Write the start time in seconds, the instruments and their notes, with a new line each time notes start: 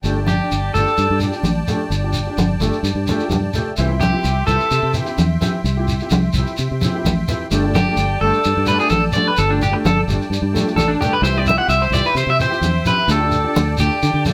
0.03 fingered electric bass G1, nylon-string guitar A3 D4 G4, accordion D5 G5 A5, muted conga, shekere
0.18 nylon-string guitar D4 G4
0.27 clean electric guitar G4, high conga, shekere
0.44 nylon-string guitar D4
0.50 fingered electric bass G1, muted conga, shekere
0.74 fingered electric bass G1, nylon-string guitar A3 D4 G4, clean electric guitar A4, shekere
0.87 shekere
0.97 fingered electric bass G2, muted conga, shekere
1.10 fingered electric bass G2
1.20 nylon-string guitar D4 G4, muted nylon-string guitar stroke, muted conga, shekere
1.32 nylon-string guitar D4 G4, shekere
1.43 fingered electric bass A1, high conga, shekere
1.68 nylon-string guitar A3 D4 G4, high conga, shekere
1.90 fingered electric bass G1, muted conga, shekere
2.04 nylon-string guitar D4 G4
2.13 shekere
2.27 nylon-string guitar D4 G4
2.38 fingered electric bass G1, muted conga, high conga, shekere
2.60 fingered electric bass G1, nylon-string guitar A3 D4 G4, shekere
2.73 shekere
2.83 fingered electric bass G2, muted conga, shekere
2.95 fingered electric bass G2
3.07 nylon-string guitar A3 D4, muted conga, high conga, shekere
3.12 nylon-string guitar G4
3.20 nylon-string guitar G4, shekere
3.24 nylon-string guitar D4
3.30 fingered electric bass G2, high conga, low conga, shekere
3.54 nylon-string guitar A3 G4, muted nylon-string guitar stroke, low conga, shekere
3.77 fingered electric bass C2, nylon-string guitar E3 C4 E4 G4, accordion E5 G5 C6, muted conga, shekere
3.89 nylon-string guitar C4, muted nylon-string guitar stroke
4.00 clean electric guitar G4, high conga, shekere
4.13 nylon-string guitar C4 E4 G4
4.24 fingered electric bass C2, muted conga, shekere
4.46 fingered electric bass C2, nylon-string guitar E3 C4 E4 G4, clean electric guitar A4, shekere
4.60 shekere
4.71 fingered electric bass C3, muted conga, shekere
4.83 fingered electric bass C3
4.93 nylon-string guitar E3 C4 E4 G4, muted conga, shekere
5.05 nylon-string guitar C4 E4 G4, shekere
5.18 fingered electric bass E2, high conga, shekere
5.40 nylon-string guitar E3 C4 E4 G4, high conga, shekere
5.64 fingered electric bass C2, muted conga, shekere
5.77 nylon-string guitar C4 E4 G4
5.88 shekere
6.00 nylon-string guitar C4 E4 G4, shekere
6.10 fingered electric bass C2, muted conga, high conga, shekere
6.33 fingered electric bass C2, nylon-string guitar E3 C4, shekere
6.38 nylon-string guitar E4 G4
6.47 shekere
6.57 fingered electric bass C3, muted conga, shekere
6.71 fingered electric bass C3
6.81 nylon-string guitar E3 C4 E4, muted conga, high conga, shekere
6.86 nylon-string guitar G4
6.95 nylon-string guitar C4 E4 G4
7.05 fingered electric bass A1, high conga, low conga, shekere
7.28 nylon-string guitar E3 C4 E4 G4, low conga, shekere
7.51 fingered electric bass G1, nylon-string guitar G3 A3 D4 G4, accordion D5 A5, muted conga, shekere
7.64 nylon-string guitar A3 D4 G4
7.74 clean electric guitar G4, high conga, shekere
7.89 nylon-string guitar A3 D4 G4
7.97 fingered electric bass G1, muted conga, shekere
8.21 fingered electric bass G1, nylon-string guitar G3 A3 D4 G4, clean electric guitar A4
8.34 shekere
8.44 fingered electric bass G2, muted conga, shekere
8.57 fingered electric bass G2
8.66 nylon-string guitar G3 A3 D4 G4, clean electric guitar B4, muted conga, shekere
8.78 nylon-string guitar A3 D4 G4, clean electric guitar G#4, shekere
8.89 fingered electric bass A1, clean electric guitar A4, high conga, shekere
9.12 nylon-string guitar G3 A3 D4 G4, clean electric guitar D5, high conga, shekere
9.28 clean electric guitar B4
9.37 fingered electric bass G1, clean electric guitar A4, muted conga, shekere
9.49 nylon-string guitar A3 D4 G4, clean electric guitar D4
9.62 clean electric guitar G4, shekere
9.71 nylon-string guitar A3 D4 G4, muted clean electric guitar stroke
9.85 fingered electric bass G1, clean electric guitar A4, muted conga, high conga, shekere
10.07 fingered electric bass G1, nylon-string guitar G3 A3 D4 G4, shekere
10.22 shekere
10.30 fingered electric bass G2, muted conga, shekere
10.42 fingered electric bass G2
10.53 nylon-string guitar G3 A3 D4 G4, muted conga, high conga, shekere
10.66 nylon-string guitar A3 D4 G4, shekere
10.76 fingered electric bass A1, clean electric guitar A4, high conga, low conga, shekere
10.88 clean electric guitar D4
11.00 nylon-string guitar G3 A3 D4 G4, clean electric guitar G4, low conga, shekere
11.13 clean electric guitar B4
11.21 fingered electric bass C2, nylon-string guitar E3 C4 E4 G4, clean electric guitar C5, accordion E5 C6, shekere
11.26 muted conga
11.37 nylon-string guitar C4 E4 G4, clean electric guitar D5
11.46 clean electric guitar E5, high conga, shekere
11.58 nylon-string guitar C4 E4 G4, clean electric guitar F#5
11.68 fingered electric bass C2, clean electric guitar E5, muted conga, shekere
11.82 clean electric guitar C5
11.91 fingered electric bass C2, nylon-string guitar E3 E4 G4, clean electric guitar D5, muted nylon-string guitar stroke, shekere
12.06 clean electric guitar B4, shekere
12.15 fingered electric bass C3, clean electric guitar C5, muted conga, shekere
12.27 fingered electric bass C3, clean electric guitar E5
12.39 nylon-string guitar E3 C4 E4 G4, clean electric guitar C5, muted conga, shekere
12.50 nylon-string guitar C4 E4 G4, shekere
12.61 fingered electric bass E2, high conga, shekere
12.85 nylon-string guitar E3 C4 E4 G4, clean electric guitar B4, high conga, shekere
13.08 fingered electric bass D2, nylon-string guitar A3 D4 G4, clean electric guitar A4, accordion D5 A5, muted conga, shekere
13.20 nylon-string guitar D4 G4
13.31 shekere
13.44 nylon-string guitar D4 G4
13.56 fingered electric bass D2, muted conga, high conga, shekere
13.78 fingered electric bass D2, nylon-string guitar A3 D4 G4, clean electric guitar G4, shekere
14.03 fingered electric bass D3, muted conga, shekere
14.14 fingered electric bass D3
14.25 nylon-string guitar A3 D4, muted conga, high conga, shekere
14.29 nylon-string guitar G4